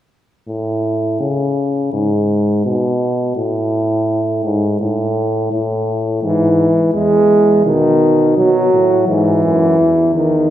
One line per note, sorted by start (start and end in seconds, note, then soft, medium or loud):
0.48 1.17 A2 medium
1.20 1.92 C#3 medium
1.93 2.64 G#2 medium
2.66 3.36 B2 medium
3.37 4.42 A2 medium
4.44 4.80 G#2 medium
4.80 5.50 A2 medium
5.52 6.21 A2 medium
6.23 6.68 G#2 medium
6.23 6.90 E3 medium
6.94 7.61 E2 medium
6.94 7.64 G#3 medium
7.65 8.36 B2 medium
7.65 8.35 D#3 medium
8.37 8.72 B2 medium
8.37 9.07 F#3 medium
8.73 9.08 A2 medium
9.08 9.43 G#2 medium
9.08 10.13 E3 medium
9.44 9.78 F#2 medium
9.79 10.48 E2 medium
10.15 10.50 D#3 medium